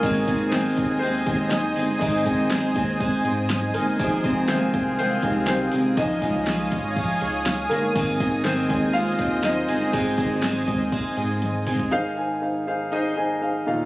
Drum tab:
HH |x-x-x-x-x-x-x-o-|x-x-x-x-x-x-x-o-|x-x-x-x-x-x-x-o-|x-x-x-x-x-x-x-o-|
SD |----o-------o---|----o-------o---|----o-------o---|----o-------o---|
T1 |----------------|----------------|----------------|----------------|
T2 |----------------|----------------|----------------|----------------|
FT |----------------|----------------|----------------|----------------|
BD |o-o---o---o-----|o-o---o-o-------|o-o---o---o-----|o-o---o-o-------|

HH |x-x-x-x-x-x-x-o-|x-x-x-x-x-x-x-o-|----------------|
SD |----o-------o---|----o-----------|----------------|
T1 |----------------|------------o---|----------------|
T2 |----------------|--------------o-|----------------|
FT |----------------|---------------o|----------------|
BD |o-o---o---o-----|o-o---o-o-------|----------------|